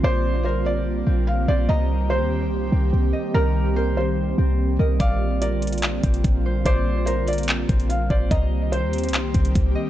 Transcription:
Already playing: D3 G3 A#3 C4 F4 A#4 C5
0.04 A#1 C5 D5
0.45 A#4 C5
0.66 D5
1.06 A#1 C4
1.27 F5
1.48 A#1 C5 D5
1.69 C2 D#3 G4 D#5 A#5
2.10 C5
2.21 D#2
2.46 C2
2.72 C2 C4
2.93 C2
3.13 D#5
3.34 C2 A#4 A#5
3.76 A#4 C5
3.97 C5
4.38 C2 C4
4.79 C2 A#4 D#5
5.00 A#1 D3 A#3 F4 D5 F5, kick, closed hi-hat
5.42 A#4 D5, closed hi-hat
5.62 closed hi-hat
5.67 closed hi-hat
5.73 closed hi-hat
5.78 closed hi-hat
5.82 clap, closed hi-hat
6.03 A#1 C4, kick, closed hi-hat
6.14 closed hi-hat
6.24 A#1, kick, closed hi-hat
6.46 C5
6.65 A#1 C5 D5, kick, closed hi-hat
7.06 A#4 C5, closed hi-hat
7.28 D5, closed hi-hat
7.33 closed hi-hat
7.38 closed hi-hat
7.43 closed hi-hat
7.48 clap, closed hi-hat
7.69 A#1 C4, kick, closed hi-hat
7.80 closed hi-hat
7.89 F5, closed hi-hat
8.10 A#1 C5 D5, kick
8.31 C2 D#3 G3 A#3 C4 G4 D#5 A#5, kick, closed hi-hat
8.72 C5, closed hi-hat
8.83 D#2
8.93 closed hi-hat
8.98 closed hi-hat
9.04 closed hi-hat
9.09 C2, closed hi-hat
9.13 clap, closed hi-hat
9.34 C2 C4, kick, closed hi-hat
9.45 closed hi-hat
9.55 C2, kick, closed hi-hat
9.75 D#5

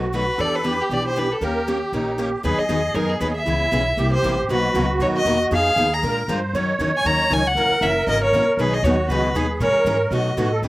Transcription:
Already playing: B1 F#4
0.14 B2 F#3 A3 D#4 F#4 B4
0.37 E2 E3 B3 D4 G4 A4 B4 D5
0.55 B4
0.64 E3 B3 D4 G4 B4
0.82 G4
0.89 B1 E3 B3 D4 G4 B4 D5
1.08 C5
1.16 E3 B3 D4 G4 B4
1.32 A4
1.41 D#2 D#3 A#3 C#4 G4 A#4
1.67 D#3 A#3 C#4 G4 A#4
1.92 A#1 D#3 A#3 C#4 D#4 G4 A#4
2.18 D#3 A#3 C#4 G4 A#4
2.43 D#2 D#3 F#3 B3 D#4 G#4 B4
2.58 D#5, muted upright bass stroke
2.69 E2 D#3 F#3 B3 D#4 G#4
2.94 F#2 D#3 F#3 B3 D#4 G#4 A#4
3.09 G#4
3.20 D#2 D#3 F#3 B3 D#4 G#4 B4
3.36 E5
3.46 C#2 C#3 E3 G#3 B3 C#4 E4 G#4
3.71 B1 C#3 E3 G#3 B3 C#4 E4 G#4
3.97 C2 C3 G3 A#3 E4 G4
4.13 C5
4.23 A1 C3 G3 A#3 E4 G4
4.49 B1 B2 D#3 F#3 A#3 B3 D#4 F#4 A#4 B4
4.74 C#2 B2 D#3 F#3 A#3 B3 D#4 F#4 A#4
4.99 D#2 B2 D#3 F#3 A#3 B3 D#4 F#4 A#4 C#5
5.17 D#5
5.25 E2 B2 D#3 F#3 A#3 B3 D#4 F#4 A#4
5.51 F2 F3 B3 D#4 G#4 F5
5.76 D#2 F3 B3 D#4 G#4
5.94 A#5
6.03 A#2 F3 G#3 D4 F4 A#4
6.28 G2 F3 G#3 D4 F4 A#4 C5
6.53 F#2 D#3 F#3 C#4 D#4 A#4 C#5
6.79 E2 D#3 F#3 C#4 D#4 A#4
6.97 G#5
7.04 D#2 D#3 F#3 C#4 D#4 A#4 A#5
7.30 C#2 D#3 F#3 C#4 D#4 A#4 G#5
7.47 F#5
7.55 F#2 C#3 E3 F#3 A#3 C#4 E4 F#4 A#4
7.70 muted upright bass stroke
7.81 F#1 C#3 E3 F#3 A#3 C#4 E4 F#4 A#4 E5
8.07 G#1 C#3 E3 F#3 A#3 C#4 E4 F#4 A#4 D#5
8.24 C#5
8.32 A#1 C#3 E3 F#3 A#3 C#4 E4 F#4 A#4
8.47 muted upright bass stroke
8.57 B1 B2 D#3 F#3 B3 D#4 G#4 B4
8.73 D#5
8.83 D#2 B2 D#3 F#3 B3 D#4 F#4 G#4 C#5
9.08 C#2 B2 D#3 F#3 B3 D#4 G#4 B4
9.34 D#2 B2 D#3 F#3 B3 D#4 G#4
9.60 A#2 E3 G#3 C#4 G#4 A#4 C#5
9.74 muted upright bass stroke
9.85 G#2 E3 G#3 C#4 G#4 A#4
10.11 B2 F#3 A3 D#4 F#4 B4 D#5
10.36 A2 B2 F#3 A3 D#4 F#4 B4
10.52 A4
10.62 E2 E3 B3 D4 G4 B4

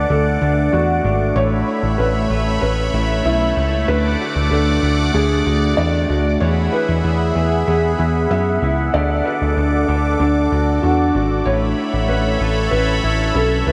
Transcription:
Already playing: D3 A3 D4 A4 B4 D5 F#5 D6
0.10 D2 A3 A4
0.41 D2 D4
0.72 E2 A3 F#4
1.04 G#1 D4
1.35 A1 A3 B4 C#5 E5 B5
1.68 E4
1.83 A1
1.98 A1 C#4 B4
2.30 A1 B4
2.61 A1 C#4 B4
2.94 A1 E4
3.25 B1 C#4 E4
3.57 C#2 E4
3.88 D2 D3 A4 B4 D5 F#5 D6
4.20 F#4
4.36 D2
4.51 D2 D4 A4
4.83 D2
5.14 D2 D4 G#4
5.46 D2 F#4
5.77 E2 D4 D5
6.09 D2 F#4
6.40 E2 E3 G#4 C#5 E5 F#5 B5
6.72 E4 B4
6.89 E2
7.04 E2 B3
7.36 E2 G#4
7.67 E2 B3 G#4
7.99 E2 E4
8.30 F#2 B3 E5
8.62 C#2 E4
8.93 D2 D3 A4 D5 D6
9.25 F#4 B4
9.42 D2
9.57 D2 D4
9.88 D2 A4
10.20 D2 D4 A4
10.52 D2 F#4
10.82 E2 D4 F#4
11.15 G#1 F#4
11.46 A1 A3 A4 B4 C#5 E5 B5
11.78 E4
11.94 A1
12.09 A1 C#4 B4
12.40 A1 B4
12.71 A1 C#4 B4
13.04 A1 E4
13.35 B1 C#4 A4
13.67 C#2 E4 B4

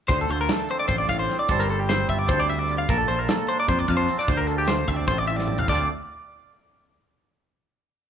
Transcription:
0.08 D2 D3 C5, kick, closed hi-hat
0.21 A4
0.29 D2 F4 C5, closed hi-hat
0.41 A#4
0.48 A3 A4, snare, closed hi-hat
0.69 C4 C5, closed hi-hat
0.80 D5
0.88 A1 F4 C5, kick, closed hi-hat
0.98 D5
1.08 A1 A2 F5, kick, snare, closed hi-hat
1.19 C5
1.29 C4, snare, closed hi-hat
1.39 D5
1.49 G1 G3 A4 C5, kick, closed hi-hat
1.60 A#4 C5
1.69 A4 C5, closed hi-hat
1.80 G4
1.89 C4 C5, snare, closed hi-hat
2.09 G1 F4 E5, kick, closed hi-hat
2.19 D5
2.28 D2 A4 C5, kick, closed hi-hat
2.39 C5 D5
2.49 D3 E5, closed hi-hat
2.59 D5
2.68 F4, closed hi-hat
2.78 F5
2.89 A#1 A#2 A4 A#4, kick, closed hi-hat
2.98 A4
3.08 A#1 F4 C5, closed hi-hat
3.19 A#4
3.29 A#3 A4, snare, closed hi-hat
3.49 D4 C5, closed hi-hat
3.60 D5
3.68 F2 F4 C5, kick, closed hi-hat
3.79 D5
3.88 F2 F3 F5, kick, closed hi-hat
3.97 C5
4.09 C4, closed hi-hat
4.19 D4 D5
4.28 D2 D3 C5, kick, closed hi-hat
4.32 C5
4.37 A#4
4.47 F4 A4, closed hi-hat
4.58 G4
4.67 A3 C5, snare, closed hi-hat
4.88 D2 C4 E5, kick, closed hi-hat
4.96 D5
5.08 A1 F4 C5, kick, closed hi-hat
5.18 D5
5.28 A2 E5, closed hi-hat
5.37 D5, snare
5.48 mid tom
5.52 C4
5.58 F5, floor tom
5.68 D2 D3 A3 C4 F4 C5 D5, kick, crash

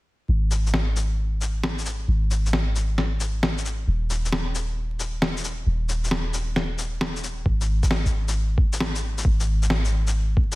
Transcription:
0.29 G#1
0.51 shaker
0.67 shaker
0.74 snare
0.96 shaker
1.41 shaker
1.64 snare
1.78 shaker
1.86 shaker
2.08 G#1
2.31 shaker
2.46 shaker
2.53 snare
2.76 shaker
2.98 snare
3.20 shaker
3.43 snare
3.58 shaker
3.65 shaker
3.88 D#1
4.10 shaker
4.25 shaker
4.32 snare
4.55 shaker
5.00 shaker
5.22 snare
5.37 shaker
5.44 shaker
5.66 D#1
5.89 shaker
6.04 shaker
6.11 snare
6.34 shaker
6.56 snare
6.78 shaker
7.01 snare
7.16 shaker
7.24 shaker
7.46 G#1, kick
7.61 shaker
7.83 kick, shaker
7.91 snare
8.06 kick, shaker
8.28 shaker
8.58 kick
8.73 shaker
8.80 snare
8.95 shaker
9.18 shaker
9.25 G#1, kick
9.40 shaker
9.63 shaker
9.70 snare
9.85 shaker
10.07 shaker
10.37 kick

